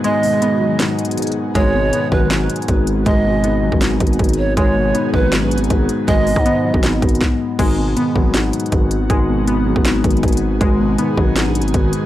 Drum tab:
CC |------------------------------------------------------------------------------------------------|------------------------------------------------------------------------------------------------|------------------------------------------------------------------------------------------------|------------------------------------------------------------------------------------------------|
HH |x-----------o-----------x-----------------------x-----------x---x---x---x--x--x--x--------------|x-----------------------x-----------------------x-----------x---x---x---x-----------x-----------|x-----------------------x-----------------------x-----------x---x---x---x--x--x--x--------------|x-----------------------x-----------------------x-----------x---x---x---x-----------x-----------|
SD |------------------------------------------------o-----------------------------------------------|------------------------------------------------o-----------------------------------------------|------------------------------------------------o-----------------------------------------------|------------------------------------------------o-----------------------------------------------|
BD |------------------------------------------------------------------------------------------------|o-----------------------------------o-----------------------------------o-----------------------|o-----------------------------------------o-----------------o-----------o-----------------------|o-----------------------------------o-----------------------------------o-----------------------|

CC |------------------------------------------------------------------------------------------------|x-----------------------------------------------------------------------------------------------|------------------------------------------------------------------------------------------------|------------------------------------------------------------------------------------------------|
HH |x-----------o-----------x-----------------------x-----------x---x---x---------------------------|x-----------------------x-----------------------x-----------x---x---x---x-----------x-----------|x-----------------------x-----------------------x-----------x---x---x---x--x--x--x--------------|x-----------------------x-----------------------x-----------x---x---x---x-----------x-----------|
SD |------------------------------------------------o-----------------------o-----------------------|------------------------------------------------o-----------------------------------------------|------------------------------------------------o-----------------------------------------------|------------------------------------------------o-----------------------------------------------|
BD |o-----------------o-----------------------o-----------------o-----------o-----------------------|o-----------------------------------o-----------------------------------o-----------------------|o-----------------------------------------o-----------------o-----------o-----------------------|o-----------------------------------o-----------------------------------o-----------------------|